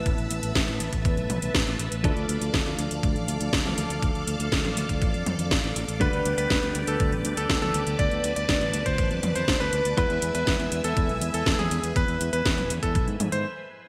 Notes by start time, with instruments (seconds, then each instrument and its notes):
Already playing: clean electric guitar A2 A3 B3 E4 B4, string machine B4 E5 A5 E6
0.06 fingered electric bass A1, kick, closed hi-hat
0.18 fingered electric bass A1, closed hi-hat
0.31 fingered electric bass A1, closed hi-hat
0.43 fingered electric bass A1, closed hi-hat
0.55 fingered electric bass A1, kick, snare, closed hi-hat
0.68 fingered electric bass A2, closed hi-hat
0.80 fingered electric bass A1, closed hi-hat
0.93 fingered electric bass A1, kick, closed hi-hat
1.05 fingered electric bass E2, kick, closed hi-hat
1.17 fingered electric bass B1, closed hi-hat
1.30 fingered electric bass B1, closed hi-hat, high tom
1.42 fingered electric bass B1, closed hi-hat
1.55 fingered electric bass A1, kick, snare, closed hi-hat
1.67 fingered electric bass A1, closed hi-hat
1.79 fingered electric bass A1, closed hi-hat
1.92 fingered electric bass A1, closed hi-hat
2.04 fingered electric bass D2, clean electric guitar F3 A3 D4 A4, string machine A4 D5 F5 D6, kick, closed hi-hat
2.17 fingered electric bass D2, closed hi-hat
2.29 fingered electric bass D2, closed hi-hat
2.41 fingered electric bass D2, closed hi-hat
2.54 fingered electric bass D2, kick, snare, closed hi-hat
2.66 fingered electric bass D2, closed hi-hat
2.79 fingered electric bass D2, closed hi-hat
2.91 fingered electric bass D2, closed hi-hat
3.03 fingered electric bass D2, kick, closed hi-hat
3.16 fingered electric bass A1, closed hi-hat
3.28 fingered electric bass D2, closed hi-hat
3.41 fingered electric bass D2, closed hi-hat
3.53 fingered electric bass D2, kick, snare, closed hi-hat
3.65 fingered electric bass D2, closed hi-hat, high tom
3.77 fingered electric bass D2, closed hi-hat
3.90 fingered electric bass D2, closed hi-hat
4.03 fingered electric bass D2, kick, closed hi-hat
4.15 fingered electric bass D2, closed hi-hat
4.27 fingered electric bass D2, closed hi-hat
4.40 fingered electric bass D2, closed hi-hat
4.52 fingered electric bass D2, kick, snare, closed hi-hat
4.65 fingered electric bass A1, closed hi-hat, high tom
4.77 fingered electric bass D2, closed hi-hat
4.89 fingered electric bass D2, kick, closed hi-hat
5.02 fingered electric bass A1, kick, closed hi-hat
5.14 fingered electric bass F2, closed hi-hat
5.26 fingered electric bass F2, closed hi-hat, high tom
5.39 fingered electric bass F2, closed hi-hat
5.51 fingered electric bass A1, kick, snare, closed hi-hat
5.64 fingered electric bass A1, closed hi-hat
5.76 fingered electric bass A1, closed hi-hat
5.88 fingered electric bass A1, closed hi-hat
6.00 fingered electric bass D2, clean electric guitar D3 G3 B3 D4 B4, electric grand piano B4, string machine B4 G5, kick, closed hi-hat
6.13 fingered electric bass D2, closed hi-hat
6.25 fingered electric bass D2, closed hi-hat
6.38 fingered electric bass D2, electric grand piano B4, closed hi-hat
6.50 fingered electric bass D2, kick, snare, closed hi-hat
6.63 fingered electric bass D2, closed hi-hat
6.75 fingered electric bass D2, closed hi-hat
6.87 fingered electric bass D2, electric grand piano A4, closed hi-hat
7.00 fingered electric bass D2, kick, closed hi-hat
7.12 fingered electric bass A1, closed hi-hat
7.25 fingered electric bass D2, closed hi-hat
7.37 fingered electric bass D2, electric grand piano A4, closed hi-hat
7.50 fingered electric bass D2, kick, snare, closed hi-hat
7.62 fingered electric bass D2, electric grand piano A4, closed hi-hat, high tom
7.74 fingered electric bass D2, closed hi-hat
7.87 fingered electric bass D2, closed hi-hat
7.99 fingered electric bass D2, electric grand piano D5, string machine A5, kick, closed hi-hat
8.11 fingered electric bass D2, closed hi-hat
8.24 fingered electric bass D2, closed hi-hat
8.36 fingered electric bass D2, electric grand piano D5, closed hi-hat
8.49 fingered electric bass D2, kick, snare, closed hi-hat
8.61 fingered electric bass A1, closed hi-hat
8.73 fingered electric bass D2, closed hi-hat
8.86 fingered electric bass D2, electric grand piano C5, kick, closed hi-hat
8.98 fingered electric bass A1, kick, closed hi-hat
9.11 fingered electric bass F2, closed hi-hat
9.23 fingered electric bass F2, closed hi-hat, high tom
9.36 fingered electric bass F2, electric grand piano C5, closed hi-hat
9.48 fingered electric bass D2, kick, snare, closed hi-hat
9.60 fingered electric bass D2, electric grand piano B4, closed hi-hat
9.73 fingered electric bass D2, closed hi-hat
9.85 fingered electric bass D2, closed hi-hat
9.97 fingered electric bass E2, clean electric guitar G#3 B3 E4 B4, electric grand piano B4, string machine E5 G#5 E6, kick, closed hi-hat
10.10 fingered electric bass E2, closed hi-hat
10.22 fingered electric bass E2, closed hi-hat
10.35 fingered electric bass E2, electric grand piano B4, closed hi-hat
10.47 fingered electric bass E2, kick, snare, closed hi-hat
10.60 fingered electric bass E2, closed hi-hat
10.72 fingered electric bass E2, closed hi-hat
10.84 fingered electric bass E2, electric grand piano A4, closed hi-hat
10.97 fingered electric bass E2, kick, closed hi-hat
11.09 fingered electric bass B1, closed hi-hat
11.21 fingered electric bass E2, closed hi-hat
11.34 fingered electric bass E2, electric grand piano A4, closed hi-hat
11.46 fingered electric bass E2, kick, snare, closed hi-hat
11.59 fingered electric bass E2, electric grand piano G#4, closed hi-hat, high tom
11.71 fingered electric bass E2, closed hi-hat
11.83 fingered electric bass E2, closed hi-hat
11.96 fingered electric bass E2, electric grand piano B4, kick, closed hi-hat
12.08 fingered electric bass E2, closed hi-hat
12.21 fingered electric bass E2, closed hi-hat
12.33 fingered electric bass E2, electric grand piano B4, closed hi-hat
12.46 fingered electric bass E2, kick, snare, closed hi-hat
12.58 fingered electric bass E1, closed hi-hat, high tom
12.70 fingered electric bass E2, closed hi-hat
12.83 fingered electric bass E2, electric grand piano A4, kick, closed hi-hat
12.95 fingered electric bass B1, kick, closed hi-hat
13.08 fingered electric bass G#2, closed hi-hat
13.20 fingered electric bass G#2, closed hi-hat, high tom
13.32 fingered electric bass G#2, electric grand piano C5, closed hi-hat